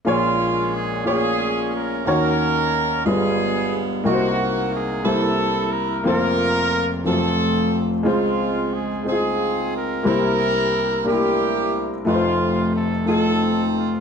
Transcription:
<<
  \new Staff \with { instrumentName = "Horn section" } { \time 6/8 \key bes \minor \tempo 4. = 60 << { f'4 aes'8 aes'4 bes'8 | bes'4. aes'4 r8 | ges'4 aes'8 a'4 bes'8 | bes'4. a'4 r8 |
f'4 aes'8 aes'4 bes'8 | bes'4. g'4 r8 | f'4 a'8 a'4 f'8 | } \\ { <aes des'>4. <des' f'>4. | <des' ges'>4. <b f'>4. | <bes ees'>4. e'4. | f'4. <c' f'>4. |
<aes c'>4. <c' f'>4. | <e' g'>4. <bes e'>4. | <a c'>4. <c' ees'>4. | } >> }
  \new Staff \with { instrumentName = "Upright piano" } { \time 6/8 \key bes \minor <bes f' aes' des''>4~ <bes f' aes' des''>16 r16 <bes f' aes' des''>4~ <bes f' aes' des''>16 r16 | <bes ees' ges' des''>4~ <bes ees' ges' des''>16 r16 <g aes f' b'>4~ <g aes f' b'>16 r16 | <bes ees' ges' bes' c''>4~ <bes ees' ges' bes' c''>16 r16 <bes e' g' c''>4~ <bes e' g' c''>16 r16 | <bes c' f' c''>4~ <bes c' f' c''>16 r16 <ges a c' f' c''>4~ <ges a c' f' c''>16 r16 |
<aes c' f' c''>4~ <aes c' f' c''>16 r16 <aes c' ees' f' c''>4~ <aes c' ees' f' c''>16 r16 | <bes e' g' c''>4~ <bes e' g' c''>16 r16 <bes d' e' g' bes'>4~ <bes d' e' g' bes'>16 r16 | <a ees' f' ces'' c''>4~ <a ees' f' ces'' c''>16 r16 <a ees' f' a'>4~ <a ees' f' a'>16 r16 | }
  \new Staff \with { instrumentName = "Upright piano" } { \clef bass \time 6/8 \key bes \minor <bes,, bes,>2. | <ees, ees>4. <g,, g,>4. | <c, c>4. <c, c>4. | <f,, f,>4. <f,, f,>4. |
<des, des>2. | <c, c>2. | <f,, f,>2. | }
>>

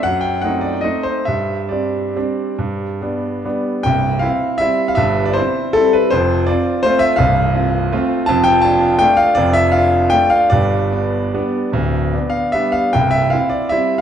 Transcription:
<<
  \new Staff \with { instrumentName = "Grand piano" } { \time 3/4 \key c \major \tempo 4 = 158 fis''8 g''8 fis''8 d''8 dis''8 c''8 | e''4 d''2~ | d''2 r4 | g''4 f''4 e''8. f''16 |
e''8. d''16 c''4 a'8 b'8 | c''4 d''4 c''8 e''8 | f''2~ f''8 r8 | a''8 g''8 a''4 g''8 f''8 |
d''8 e''8 f''4 g''8 f''8 | d''2.~ | d''4. f''8 e''8 f''8 | g''8 e''8 f''8 d''8 e''8. r16 | }
  \new Staff \with { instrumentName = "Grand piano" } { \time 3/4 \key c \major fis,4 <a c' dis'>4 <a c' dis'>4 | g,4 <g c' d'>4 <g c' d'>4 | g,4 <g b d'>4 <g b d'>4 | <c,, c,>4 <c' e'>4 <g c' e'>4 |
<g,, g,>4 <c' e'>4 <g c' e'>4 | <f,, f,>4 <c' f'>4 <a c' f'>4 | <c,, c,>4 <c' f'>4 <a c' f'>4 | <f,, f,>4 <d' f'>4 <a d' f'>4 |
<f,, f,>4 <d' f'>4 <a d' f'>4 | <g,, g,>4 <b d'>4 <g b d'>4 | <d,, d,>4 <b d'>4 <g b d'>4 | <c,, c,>4 <c' e'>4 <g c' e'>4 | }
>>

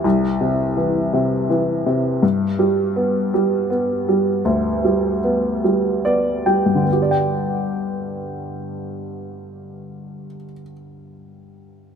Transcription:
\new Staff \with { instrumentName = "Upright piano" } { \clef bass \time 6/8 \key g \major \tempo 4. = 50 c,8 c8 e8 c8 e8 c8 | g,8 g8 b8 g8 b8 g8 | d,8 g8 b8 g8 <b d''>8 <g g''>8 | <g, d b g' d'' g''>2.~ |
<g, d b g' d'' g''>2. | }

